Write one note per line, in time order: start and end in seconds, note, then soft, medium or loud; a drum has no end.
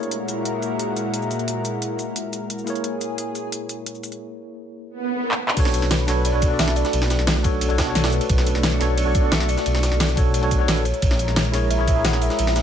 0.00 4.17 A#2 medium
0.00 4.17 G#3 medium
0.00 2.63 A#3 medium
0.00 2.65 E4 medium
0.00 4.17 E4 medium
0.00 4.17 F#4 medium
0.00 2.65 G#4 medium
0.00 2.64 A#4 medium
0.00 2.66 A#4 medium
0.00 2.67 C#5 medium
0.00 closed hi-hat soft
0.11 closed hi-hat medium
0.28 closed hi-hat medium
0.28 shaker medium
0.45 closed hi-hat medium
0.63 open hi-hat medium
0.63 shaker medium
0.80 closed hi-hat medium
0.97 closed hi-hat medium
0.97 shaker medium
1.14 closed hi-hat medium
1.22 shaker soft
1.31 open hi-hat medium
1.31 shaker medium
1.39 closed hi-hat soft
1.48 closed hi-hat medium
1.65 closed hi-hat medium
1.65 shaker medium
1.82 closed hi-hat medium
1.99 open hi-hat medium
1.99 shaker medium
2.16 closed hi-hat medium
2.33 closed hi-hat medium
2.33 shaker medium
2.50 closed hi-hat medium
2.58 shaker soft
2.64 5.36 A#3 medium
2.64 5.37 E4 medium
2.64 4.19 G#4 medium
2.64 5.38 G#4 medium
2.64 open hi-hat medium
2.64 shaker medium
2.69 5.39 A#4 medium
2.69 5.39 C#5 medium
2.75 closed hi-hat soft
2.84 closed hi-hat medium
3.01 closed hi-hat medium
3.01 shaker medium
3.18 closed hi-hat medium
3.35 open hi-hat medium
3.35 shaker medium
3.52 closed hi-hat medium
3.69 closed hi-hat medium
3.69 shaker medium
3.86 closed hi-hat medium
3.95 shaker soft
4.03 open hi-hat medium
4.03 shaker medium
4.12 closed hi-hat soft
4.89 swell medium
5.23 5.30 A#4 medium
5.31 clap medium
5.40 6.21 B4 medium
5.48 clap medium
5.54 5.81 B1 loud
5.54 10.81 A3 medium
5.54 6.03 D4 loud
5.54 10.81 D4 medium
5.54 6.04 F#4 medium
5.54 6.05 A4 medium
5.54 8.27 B4 loud
5.54 kick loud
5.54 closed hi-hat loud
5.54 ride medium
5.54 crash loud
5.60 6.06 C#5 loud
5.65 snare soft
5.74 closed hi-hat medium
5.74 ride medium
5.74 shaker medium
5.82 6.07 B1 loud
5.82 snare soft
5.91 snare loud
5.91 closed hi-hat loud
5.91 ride medium
6.00 ride soft
6.07 6.32 B1 loud
6.07 6.31 D4 medium
6.07 6.31 F#4 medium
6.07 6.32 A4 medium
6.07 6.32 C#5 loud
6.07 snare soft
6.07 open hi-hat medium
6.07 ride medium
6.07 shaker medium
6.25 6.61 D5 loud
6.25 closed hi-hat medium
6.25 ride loud
6.32 6.58 B1 medium
6.32 6.47 D4 medium
6.32 6.49 F#4 medium
6.32 6.49 A4 medium
6.32 6.49 C#5 medium
6.42 kick loud
6.42 closed hi-hat medium
6.42 ride medium
6.42 shaker medium
6.48 7.41 D4 medium
6.48 7.42 F#4 medium
6.48 7.43 A4 medium
6.54 7.44 D5 medium
6.59 6.83 B1 medium
6.59 6.78 E5 loud
6.59 snare loud
6.59 closed hi-hat medium
6.59 open hi-hat medium
6.68 snare medium
6.68 shaker soft
6.76 7.44 D5 loud
6.76 open hi-hat medium
6.76 ride medium
6.76 shaker medium
6.85 snare soft
6.85 closed hi-hat soft
6.93 7.18 B1 loud
6.93 closed hi-hat medium
6.93 ride medium
7.02 snare soft
7.10 snare medium
7.10 closed hi-hat medium
7.10 ride medium
7.10 shaker medium
7.19 7.43 B1 loud
7.19 snare soft
7.27 snare loud
7.27 closed hi-hat loud
7.27 ride medium
7.36 snare soft
7.43 7.69 B1 loud
7.43 7.67 D4 medium
7.43 7.68 F#4 medium
7.43 7.68 A4 medium
7.43 7.69 C#5 loud
7.43 kick loud
7.43 open hi-hat medium
7.43 ride medium
7.43 shaker medium
7.61 closed hi-hat medium
7.61 ride medium
7.69 7.94 B1 medium
7.69 7.83 D4 medium
7.69 7.85 F#4 medium
7.69 7.85 A4 medium
7.69 7.86 C#5 medium
7.69 ride soft
7.78 kick medium
7.78 snare loud
7.78 closed hi-hat medium
7.78 ride medium
7.78 shaker medium
7.84 8.77 D4 medium
7.84 8.78 F#4 medium
7.84 8.79 A4 medium
7.90 8.80 C#5 medium
7.95 8.20 B1 loud
7.95 8.14 A4 medium
7.95 snare loud
7.95 closed hi-hat loud
7.95 ride medium
8.04 snare loud
8.04 ride medium
8.04 shaker soft
8.12 8.97 B4 loud
8.12 open hi-hat medium
8.12 shaker medium
8.21 closed hi-hat soft
8.21 ride medium
8.29 8.54 B1 loud
8.29 10.83 C#6 loud
8.29 kick loud
8.29 closed hi-hat medium
8.29 ride medium
8.38 snare soft
8.47 closed hi-hat medium
8.47 ride medium
8.47 shaker medium
8.55 8.79 B1 medium
8.55 snare soft
8.63 snare loud
8.63 closed hi-hat medium
8.63 ride medium
8.72 ride soft
8.79 9.05 B1 loud
8.79 9.04 D4 medium
8.79 9.04 F#4 medium
8.79 9.04 A4 medium
8.79 9.05 C#5 loud
8.79 snare soft
8.79 open hi-hat medium
8.79 ride medium
8.79 shaker medium
8.98 9.33 D5 loud
8.98 closed hi-hat medium
8.98 ride medium
9.05 9.31 B1 medium
9.05 9.19 D4 medium
9.05 9.21 F#4 medium
9.05 9.22 A4 medium
9.05 9.22 C#5 medium
9.15 kick loud
9.15 closed hi-hat medium
9.15 ride medium
9.15 shaker medium
9.21 10.14 D4 medium
9.21 10.15 F#4 medium
9.21 10.16 A4 medium
9.26 10.17 D5 medium
9.32 9.56 B1 medium
9.32 9.50 E5 loud
9.32 snare loud
9.32 closed hi-hat medium
9.32 open hi-hat medium
9.40 snare medium
9.40 shaker soft
9.49 10.17 D5 loud
9.49 open hi-hat medium
9.49 ride medium
9.49 shaker medium
9.57 snare soft
9.57 closed hi-hat soft
9.66 9.90 B1 loud
9.66 closed hi-hat medium
9.66 ride medium
9.75 snare soft
9.83 snare medium
9.83 closed hi-hat medium
9.83 ride medium
9.83 shaker medium
9.91 10.16 B1 loud
9.91 snare soft
10.00 snare loud
10.00 closed hi-hat medium
10.00 ride medium
10.09 snare soft
10.09 closed hi-hat soft
10.16 10.41 B1 loud
10.16 10.40 D4 medium
10.16 10.40 F#4 medium
10.16 10.41 A4 medium
10.16 10.41 C#5 loud
10.16 kick loud
10.16 open hi-hat medium
10.16 ride medium
10.16 shaker medium
10.34 closed hi-hat medium
10.34 ride medium
10.41 10.67 B1 medium
10.41 10.57 D4 medium
10.41 10.58 F#4 medium
10.41 10.58 A4 medium
10.41 10.58 C#5 medium
10.41 ride soft
10.51 kick medium
10.51 closed hi-hat medium
10.51 ride medium
10.51 shaker medium
10.58 10.84 D4 medium
10.58 10.84 F#4 medium
10.58 10.84 A4 medium
10.58 10.85 C#5 medium
10.68 10.92 A#1 loud
10.68 10.87 B4 medium
10.68 snare loud
10.68 closed hi-hat medium
10.68 ride medium
10.77 shaker soft
10.85 12.62 G#3 medium
10.85 12.62 E4 medium
10.85 12.62 A#4 medium
10.85 11.72 C#5 loud
10.85 open hi-hat medium
10.85 ride medium
10.85 shaker medium
10.94 closed hi-hat soft
11.02 11.27 A#1 loud
11.02 kick loud
11.02 closed hi-hat medium
11.02 ride medium
11.11 snare soft
11.19 closed hi-hat medium
11.19 ride medium
11.19 shaker medium
11.28 11.52 A#1 loud
11.28 snare soft
11.36 snare loud
11.36 closed hi-hat medium
11.36 ride medium
11.45 ride soft
11.52 11.78 A#1 loud
11.52 11.76 E4 medium
11.52 11.77 G#4 medium
11.52 11.77 A#4 medium
11.52 11.78 C#5 loud
11.52 snare soft
11.52 open hi-hat medium
11.52 ride medium
11.52 shaker medium
11.71 12.06 E5 loud
11.71 closed hi-hat medium
11.71 ride medium
11.78 12.03 A#1 medium
11.78 11.92 E4 medium
11.78 11.94 G#4 medium
11.78 11.94 A#4 medium
11.78 11.95 C#5 medium
11.88 kick loud
11.88 closed hi-hat medium
11.88 ride medium
11.88 shaker medium
11.93 12.62 E4 medium
11.93 12.62 G#4 medium
11.93 12.62 A#4 medium
11.99 12.62 C#5 medium
12.05 12.29 A#1 loud
12.05 12.21 F#5 loud
12.05 snare loud
12.05 closed hi-hat medium
12.05 open hi-hat medium
12.13 snare medium
12.13 shaker soft
12.22 12.62 E5 loud
12.22 open hi-hat medium
12.22 ride medium
12.22 shaker medium
12.30 snare soft
12.30 closed hi-hat soft
12.39 12.62 A#1 loud
12.39 closed hi-hat medium
12.39 ride medium
12.47 snare soft
12.56 snare medium
12.56 closed hi-hat medium
12.56 ride medium
12.56 shaker medium